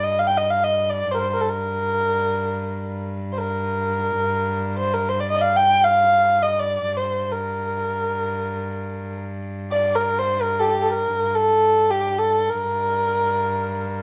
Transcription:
0, 0, Header, 1, 3, 480
1, 0, Start_track
1, 0, Tempo, 500000
1, 13462, End_track
2, 0, Start_track
2, 0, Title_t, "Kamancheh"
2, 0, Program_c, 0, 110
2, 34, Note_on_c, 0, 75, 74
2, 183, Note_on_c, 0, 77, 75
2, 197, Note_off_c, 0, 75, 0
2, 261, Note_on_c, 0, 79, 80
2, 275, Note_off_c, 0, 77, 0
2, 361, Note_on_c, 0, 75, 70
2, 375, Note_off_c, 0, 79, 0
2, 483, Note_on_c, 0, 77, 74
2, 498, Note_off_c, 0, 75, 0
2, 614, Note_on_c, 0, 75, 71
2, 628, Note_off_c, 0, 77, 0
2, 864, Note_on_c, 0, 74, 72
2, 878, Note_off_c, 0, 75, 0
2, 1070, Note_on_c, 0, 72, 63
2, 1084, Note_off_c, 0, 74, 0
2, 1098, Note_on_c, 0, 70, 57
2, 1112, Note_off_c, 0, 72, 0
2, 1157, Note_on_c, 0, 72, 66
2, 1171, Note_off_c, 0, 70, 0
2, 1283, Note_on_c, 0, 70, 59
2, 1298, Note_off_c, 0, 72, 0
2, 1351, Note_on_c, 0, 69, 53
2, 1365, Note_off_c, 0, 70, 0
2, 1431, Note_on_c, 0, 70, 69
2, 1445, Note_off_c, 0, 69, 0
2, 2916, Note_off_c, 0, 70, 0
2, 3192, Note_on_c, 0, 72, 54
2, 3245, Note_on_c, 0, 70, 76
2, 3260, Note_off_c, 0, 72, 0
2, 4578, Note_off_c, 0, 70, 0
2, 4599, Note_on_c, 0, 72, 70
2, 4742, Note_on_c, 0, 70, 70
2, 4756, Note_off_c, 0, 72, 0
2, 4887, Note_on_c, 0, 72, 72
2, 4901, Note_off_c, 0, 70, 0
2, 4995, Note_on_c, 0, 74, 68
2, 5009, Note_off_c, 0, 72, 0
2, 5083, Note_off_c, 0, 74, 0
2, 5088, Note_on_c, 0, 75, 81
2, 5138, Note_on_c, 0, 74, 64
2, 5153, Note_off_c, 0, 75, 0
2, 5159, Note_on_c, 0, 75, 71
2, 5173, Note_off_c, 0, 74, 0
2, 5198, Note_on_c, 0, 77, 82
2, 5212, Note_off_c, 0, 75, 0
2, 5343, Note_on_c, 0, 79, 86
2, 5357, Note_off_c, 0, 77, 0
2, 5607, Note_on_c, 0, 77, 84
2, 5621, Note_off_c, 0, 79, 0
2, 6170, Note_on_c, 0, 75, 71
2, 6184, Note_off_c, 0, 77, 0
2, 6331, Note_on_c, 0, 74, 71
2, 6346, Note_off_c, 0, 75, 0
2, 6688, Note_on_c, 0, 72, 65
2, 6703, Note_off_c, 0, 74, 0
2, 7029, Note_on_c, 0, 70, 70
2, 7043, Note_off_c, 0, 72, 0
2, 8830, Note_off_c, 0, 70, 0
2, 9332, Note_on_c, 0, 74, 80
2, 9556, Note_on_c, 0, 70, 74
2, 9571, Note_off_c, 0, 74, 0
2, 9779, Note_on_c, 0, 72, 76
2, 9793, Note_off_c, 0, 70, 0
2, 10004, Note_on_c, 0, 70, 80
2, 10019, Note_off_c, 0, 72, 0
2, 10170, Note_on_c, 0, 69, 75
2, 10179, Note_on_c, 0, 67, 65
2, 10185, Note_off_c, 0, 70, 0
2, 10193, Note_off_c, 0, 69, 0
2, 10221, Note_on_c, 0, 69, 75
2, 10235, Note_off_c, 0, 67, 0
2, 10284, Note_on_c, 0, 67, 69
2, 10299, Note_off_c, 0, 69, 0
2, 10391, Note_on_c, 0, 69, 73
2, 10405, Note_off_c, 0, 67, 0
2, 10488, Note_off_c, 0, 69, 0
2, 10494, Note_on_c, 0, 70, 74
2, 10899, Note_on_c, 0, 69, 85
2, 10914, Note_off_c, 0, 70, 0
2, 11430, Note_on_c, 0, 67, 75
2, 11444, Note_off_c, 0, 69, 0
2, 11699, Note_on_c, 0, 69, 73
2, 11714, Note_off_c, 0, 67, 0
2, 11998, Note_on_c, 0, 70, 82
2, 12012, Note_off_c, 0, 69, 0
2, 13462, Note_off_c, 0, 70, 0
2, 13462, End_track
3, 0, Start_track
3, 0, Title_t, "Cello"
3, 0, Program_c, 1, 42
3, 0, Note_on_c, 1, 43, 67
3, 1082, Note_off_c, 1, 43, 0
3, 1088, Note_on_c, 1, 43, 65
3, 6599, Note_off_c, 1, 43, 0
3, 6605, Note_on_c, 1, 43, 58
3, 12110, Note_off_c, 1, 43, 0
3, 12115, Note_on_c, 1, 43, 66
3, 13462, Note_off_c, 1, 43, 0
3, 13462, End_track
0, 0, End_of_file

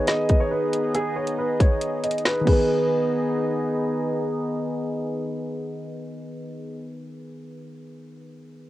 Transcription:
0, 0, Header, 1, 5, 480
1, 0, Start_track
1, 0, Key_signature, 5, "minor"
1, 0, Tempo, 434783
1, 1048, Time_signature, 4, 2, 24, 8
1, 9603, End_track
2, 0, Start_track
2, 0, Title_t, "Grand piano"
2, 0, Program_c, 0, 0
2, 86, Note_on_c, 0, 75, 93
2, 425, Note_off_c, 0, 75, 0
2, 447, Note_on_c, 0, 73, 84
2, 548, Note_off_c, 0, 73, 0
2, 567, Note_on_c, 0, 71, 68
2, 1019, Note_off_c, 0, 71, 0
2, 1049, Note_on_c, 0, 68, 100
2, 1250, Note_off_c, 0, 68, 0
2, 1284, Note_on_c, 0, 73, 85
2, 1488, Note_off_c, 0, 73, 0
2, 1529, Note_on_c, 0, 71, 79
2, 1730, Note_off_c, 0, 71, 0
2, 1765, Note_on_c, 0, 73, 87
2, 2218, Note_off_c, 0, 73, 0
2, 2249, Note_on_c, 0, 75, 74
2, 2450, Note_off_c, 0, 75, 0
2, 2487, Note_on_c, 0, 71, 86
2, 2689, Note_off_c, 0, 71, 0
2, 2727, Note_on_c, 0, 71, 82
2, 4363, Note_off_c, 0, 71, 0
2, 9603, End_track
3, 0, Start_track
3, 0, Title_t, "Analog synth pad"
3, 0, Program_c, 1, 89
3, 0, Note_on_c, 1, 59, 81
3, 0, Note_on_c, 1, 63, 75
3, 0, Note_on_c, 1, 68, 69
3, 0, Note_on_c, 1, 75, 86
3, 2692, Note_off_c, 1, 59, 0
3, 2692, Note_off_c, 1, 63, 0
3, 2692, Note_off_c, 1, 68, 0
3, 2692, Note_off_c, 1, 75, 0
3, 2727, Note_on_c, 1, 59, 76
3, 2727, Note_on_c, 1, 63, 70
3, 2727, Note_on_c, 1, 68, 72
3, 2727, Note_on_c, 1, 75, 85
3, 7466, Note_off_c, 1, 59, 0
3, 7466, Note_off_c, 1, 63, 0
3, 7466, Note_off_c, 1, 68, 0
3, 7466, Note_off_c, 1, 75, 0
3, 9603, End_track
4, 0, Start_track
4, 0, Title_t, "Synth keys"
4, 0, Program_c, 2, 88
4, 0, Control_c, 2, 64, 127
4, 0, Note_on_c, 2, 51, 64
4, 0, Note_on_c, 2, 59, 60
4, 0, Note_on_c, 2, 68, 63
4, 0, Note_on_c, 2, 71, 74
4, 2650, Note_off_c, 2, 51, 0
4, 2663, Note_on_c, 2, 51, 82
4, 2678, Note_off_c, 2, 59, 0
4, 2689, Note_off_c, 2, 68, 0
4, 2699, Note_off_c, 2, 71, 0
4, 2705, Note_on_c, 2, 59, 74
4, 2744, Control_c, 2, 64, 0
4, 2749, Note_on_c, 2, 68, 74
4, 2792, Note_on_c, 2, 71, 91
4, 2843, Control_c, 2, 64, 127
4, 2981, Control_c, 2, 64, 0
4, 3170, Control_c, 2, 64, 127
4, 7402, Note_off_c, 2, 51, 0
4, 7444, Note_off_c, 2, 59, 0
4, 7488, Note_off_c, 2, 68, 0
4, 7531, Note_off_c, 2, 71, 0
4, 9584, Control_c, 2, 64, 0
4, 9603, End_track
5, 0, Start_track
5, 0, Title_t, "Drums"
5, 81, Note_on_c, 9, 42, 79
5, 88, Note_on_c, 9, 38, 113
5, 192, Note_off_c, 9, 42, 0
5, 199, Note_off_c, 9, 38, 0
5, 322, Note_on_c, 9, 42, 82
5, 327, Note_on_c, 9, 36, 95
5, 432, Note_off_c, 9, 42, 0
5, 438, Note_off_c, 9, 36, 0
5, 811, Note_on_c, 9, 42, 95
5, 922, Note_off_c, 9, 42, 0
5, 1048, Note_on_c, 9, 42, 73
5, 1158, Note_off_c, 9, 42, 0
5, 1405, Note_on_c, 9, 42, 79
5, 1516, Note_off_c, 9, 42, 0
5, 1768, Note_on_c, 9, 36, 101
5, 1769, Note_on_c, 9, 42, 81
5, 1878, Note_off_c, 9, 36, 0
5, 1880, Note_off_c, 9, 42, 0
5, 2001, Note_on_c, 9, 42, 79
5, 2111, Note_off_c, 9, 42, 0
5, 2248, Note_on_c, 9, 42, 80
5, 2328, Note_off_c, 9, 42, 0
5, 2328, Note_on_c, 9, 42, 61
5, 2407, Note_off_c, 9, 42, 0
5, 2407, Note_on_c, 9, 42, 46
5, 2488, Note_on_c, 9, 38, 117
5, 2518, Note_off_c, 9, 42, 0
5, 2598, Note_off_c, 9, 38, 0
5, 2727, Note_on_c, 9, 36, 106
5, 2728, Note_on_c, 9, 49, 82
5, 2838, Note_off_c, 9, 36, 0
5, 2838, Note_off_c, 9, 49, 0
5, 9603, End_track
0, 0, End_of_file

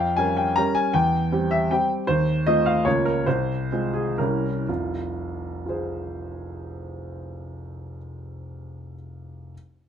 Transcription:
0, 0, Header, 1, 2, 480
1, 0, Start_track
1, 0, Key_signature, -4, "minor"
1, 0, Tempo, 376176
1, 1203, Time_signature, 3, 2, 24, 8
1, 2638, Tempo, 396563
1, 4078, Tempo, 442152
1, 4558, Tempo, 485437
1, 6478, Tempo, 462963
1, 7918, Tempo, 438276
1, 11048, End_track
2, 0, Start_track
2, 0, Title_t, "Grand piano"
2, 0, Program_c, 0, 0
2, 0, Note_on_c, 0, 41, 55
2, 0, Note_on_c, 0, 79, 65
2, 36, Control_c, 0, 64, 127
2, 210, Note_on_c, 0, 80, 78
2, 221, Note_off_c, 0, 41, 0
2, 222, Note_off_c, 0, 79, 0
2, 223, Note_on_c, 0, 55, 37
2, 232, Note_on_c, 0, 61, 41
2, 239, Note_on_c, 0, 70, 45
2, 469, Note_on_c, 0, 79, 65
2, 478, Note_off_c, 0, 80, 0
2, 677, Note_off_c, 0, 55, 0
2, 682, Note_off_c, 0, 61, 0
2, 686, Note_off_c, 0, 70, 0
2, 710, Note_on_c, 0, 82, 81
2, 725, Note_off_c, 0, 79, 0
2, 725, Note_on_c, 0, 55, 46
2, 730, Note_on_c, 0, 61, 44
2, 743, Note_on_c, 0, 70, 52
2, 751, Control_c, 0, 64, 0
2, 953, Note_on_c, 0, 80, 77
2, 959, Note_off_c, 0, 82, 0
2, 1150, Note_off_c, 0, 55, 0
2, 1152, Note_off_c, 0, 61, 0
2, 1160, Note_off_c, 0, 70, 0
2, 1193, Note_off_c, 0, 80, 0
2, 1193, Note_on_c, 0, 79, 75
2, 1198, Note_on_c, 0, 40, 59
2, 1416, Control_c, 0, 64, 127
2, 1661, Note_off_c, 0, 40, 0
2, 1687, Note_on_c, 0, 55, 40
2, 1687, Note_on_c, 0, 60, 42
2, 1698, Note_on_c, 0, 67, 46
2, 1924, Note_off_c, 0, 79, 0
2, 1925, Note_on_c, 0, 76, 73
2, 2128, Note_off_c, 0, 55, 0
2, 2128, Note_off_c, 0, 60, 0
2, 2134, Note_off_c, 0, 67, 0
2, 2171, Note_off_c, 0, 76, 0
2, 2181, Note_on_c, 0, 79, 68
2, 2185, Control_c, 0, 64, 0
2, 2188, Note_on_c, 0, 55, 46
2, 2190, Note_on_c, 0, 60, 47
2, 2196, Note_on_c, 0, 67, 49
2, 2412, Note_off_c, 0, 79, 0
2, 2600, Note_off_c, 0, 55, 0
2, 2601, Note_off_c, 0, 60, 0
2, 2604, Note_off_c, 0, 67, 0
2, 2645, Note_on_c, 0, 72, 83
2, 2659, Note_on_c, 0, 39, 58
2, 2832, Control_c, 0, 64, 127
2, 3103, Note_off_c, 0, 39, 0
2, 3110, Note_off_c, 0, 72, 0
2, 3119, Note_on_c, 0, 75, 80
2, 3127, Note_on_c, 0, 57, 42
2, 3130, Note_on_c, 0, 60, 40
2, 3134, Note_on_c, 0, 65, 45
2, 3353, Note_on_c, 0, 77, 71
2, 3358, Note_off_c, 0, 75, 0
2, 3555, Note_off_c, 0, 57, 0
2, 3556, Note_off_c, 0, 60, 0
2, 3559, Note_off_c, 0, 65, 0
2, 3583, Note_on_c, 0, 73, 72
2, 3591, Note_on_c, 0, 58, 39
2, 3593, Note_off_c, 0, 77, 0
2, 3597, Note_on_c, 0, 37, 55
2, 3610, Control_c, 0, 64, 0
2, 3610, Note_on_c, 0, 65, 41
2, 3827, Control_c, 0, 64, 127
2, 3828, Note_off_c, 0, 73, 0
2, 3830, Note_on_c, 0, 70, 63
2, 4029, Note_off_c, 0, 58, 0
2, 4039, Note_off_c, 0, 65, 0
2, 4065, Note_off_c, 0, 37, 0
2, 4076, Note_off_c, 0, 70, 0
2, 4085, Note_on_c, 0, 72, 73
2, 4093, Note_on_c, 0, 36, 56
2, 4094, Control_c, 0, 64, 0
2, 4343, Control_c, 0, 64, 127
2, 4551, Note_off_c, 0, 36, 0
2, 4575, Note_on_c, 0, 56, 36
2, 4581, Note_on_c, 0, 60, 38
2, 4590, Note_on_c, 0, 65, 39
2, 4792, Note_on_c, 0, 68, 59
2, 4796, Note_off_c, 0, 72, 0
2, 5003, Note_off_c, 0, 56, 0
2, 5005, Note_off_c, 0, 60, 0
2, 5010, Note_off_c, 0, 65, 0
2, 5033, Note_off_c, 0, 68, 0
2, 5033, Note_on_c, 0, 70, 54
2, 5043, Note_on_c, 0, 36, 50
2, 5044, Control_c, 0, 64, 0
2, 5044, Note_on_c, 0, 55, 38
2, 5052, Note_on_c, 0, 61, 34
2, 5058, Note_on_c, 0, 64, 36
2, 5296, Control_c, 0, 64, 127
2, 5501, Note_off_c, 0, 55, 0
2, 5505, Note_off_c, 0, 61, 0
2, 5508, Note_off_c, 0, 64, 0
2, 5521, Note_off_c, 0, 36, 0
2, 5531, Note_on_c, 0, 65, 44
2, 5535, Note_off_c, 0, 70, 0
2, 5536, Note_on_c, 0, 29, 41
2, 5536, Note_on_c, 0, 36, 43
2, 5546, Control_c, 0, 64, 0
2, 5763, Control_c, 0, 64, 127
2, 6480, Note_off_c, 0, 65, 0
2, 6496, Note_on_c, 0, 65, 34
2, 6518, Note_on_c, 0, 68, 32
2, 6533, Note_on_c, 0, 72, 32
2, 8953, Note_off_c, 0, 29, 0
2, 8953, Note_off_c, 0, 36, 0
2, 10007, Note_off_c, 0, 65, 0
2, 10019, Note_off_c, 0, 68, 0
2, 10027, Note_off_c, 0, 72, 0
2, 10666, Control_c, 0, 64, 0
2, 11048, End_track
0, 0, End_of_file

